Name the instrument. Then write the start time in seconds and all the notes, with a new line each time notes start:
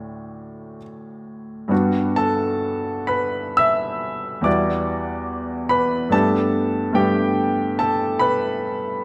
grand piano
Already playing: D2 A2 D5 G5 B5 D6
1.68 G2 G3 B3 D4 F#4
2.16 A4 A5
3.07 B4 B5
3.57 E5 E6
4.41 E2 G3 B3 E4 F#4 D5 D6
5.69 B4 B5
6.09 G2 A3 B3 D4 G4 A5
6.14 A4
6.93 G2 A3 B3 D4 G4 G5
7.79 A4 A5
8.19 B4 B5